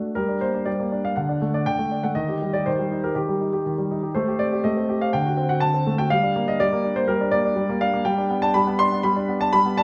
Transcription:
grand piano
Already playing: A3 D4 F#4
0.15 G3 A#4
0.28 D4
0.41 A#3 C5
0.54 D4
0.65 G3 D5
0.80 A#3
0.92 D4
1.05 A#3 F5
1.16 D3 F#5
1.29 D4
1.42 A3
1.54 D4 D5
1.66 D3 G5
1.79 A3
1.91 D4
2.03 A3 F#5
2.15 D#3 D#5
2.29 G4
2.42 G3
2.53 G4 D5
2.66 D#3 C5
2.79 G3
2.91 D#4
3.04 G4 A#4
3.15 D#3 G4
3.29 G3
3.41 D#4
3.53 G4
3.66 D#3
3.78 G3
3.91 D#4
4.03 G4
4.15 A3 C5
4.28 G4
4.39 C4 D5
4.52 G4
4.64 A3 D#5
4.77 C4
4.89 G4
5.01 C4 F5
5.13 D3 G5
5.26 F#4
5.37 C4
5.49 F#4 F#5
5.60 D3 A5
5.74 C4
5.87 A3
5.98 F#4 G5
6.10 G3 F5
6.23 D4
6.36 A#3
6.48 D4 D#5
6.60 G3 D5
6.73 A#3
6.84 D4
6.96 A#3 C5
7.08 G3 A#4
7.21 D4
7.31 A#3 D5
7.44 D4
7.56 G3
7.69 A#3
7.81 D4 F5
7.93 A#3
8.05 G3 G5
8.18 D4
8.31 B3
8.42 D4 A5
8.54 G3 B5
8.67 B3
8.79 D4 C6
8.92 B3
9.03 G3 B5
9.16 D4
9.29 B3
9.41 D4 A5
9.53 G3 B5
9.66 B3
9.77 D4 A5

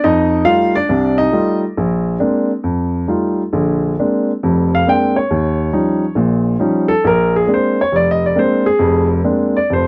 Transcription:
upright piano
0.04 F2 D#4 D#5
0.45 G3 A3 D#4 F4 F5
0.75 D4 D5
0.89 C2 C3
1.18 D#4 D#5
1.32 G3 A3 D#4 F4
1.77 A#1
2.19 G#3 A#3 C4 D4
2.64 F2
3.08 G3 A3 D#4 F4
3.53 A#1 D3
3.99 G#3 A#3 C4 D4
4.43 F1 F2
4.75 F5
4.87 G#3 A#3 C4 D4 G5
5.16 C#5
5.31 D#2
5.73 F3 G3 C#4 D#4
6.15 A#1 A#2
6.59 F3 G3 C#4 D#4
6.88 A4
7.04 A#1 A#4
7.36 G#4
7.47 G#3 A#3 C4 D4
7.54 C5
7.81 C#5
7.92 F1 D5
8.11 D#5
8.26 D5
8.36 G#3 A#3 C4 D4 C5
8.66 G#4
8.79 F1 F2
9.24 G#3 A#3 C4 D4
9.57 D5
9.70 F1 F2 C5

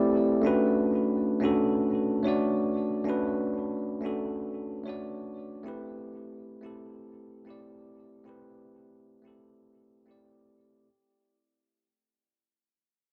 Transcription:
tine electric piano
Already playing: A3 C4 E4 G4 A4 D5
0.42 A3 C#4 D4
0.46 F#4 B4
1.40 A3 C#4 D4 F#4
1.45 A4
2.23 A3 D4 F#4 C#5
2.28 D5
3.04 A3 C#4 D4
3.08 F#4 B4
4.01 A3 C#4 D4
4.05 F#4 A4
4.84 A3 D4 C#5
4.88 F#4 D5
5.63 A3 C4 E4 G4
5.68 B4
6.61 A3 C4 E4 G4
6.66 A4
7.45 A3 C4 E4
7.49 G4 D5
8.24 A3 C4 E4 G4
8.29 B4
9.22 A3 C4 E4
9.27 G4 A4
10.06 A3 C4 E4 G4
10.11 D5

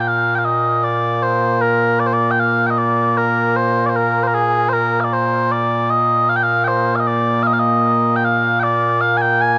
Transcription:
bagpipes
Already playing: A#2 A#3
0.00 G5
0.08 F5
0.35 F5 G5
0.45 D#5
0.84 D5
1.22 C5
1.61 A#4
2.00 D5
2.06 C5
2.13 D5
2.31 G5
2.40 F5
2.66 D#5 G5
2.78 D5
3.17 A#4
3.56 C5
3.86 C5 D5
3.96 A#4
4.23 C5
4.27 A#4
4.35 G#4
4.69 C5
4.73 A#4
5.00 D5 F5
5.13 C5
5.51 D5
5.90 D#5
6.29 F5
6.36 G5
6.43 F5
6.64 C5 G5
6.96 F5
7.00 D#5
7.07 D5
7.43 F5
7.47 D#5
7.54 F5
7.60 D#5
8.16 G5
8.25 F5
8.59 D5 G5
9.01 F5
9.17 G#5
9.21 G5
9.41 G#5

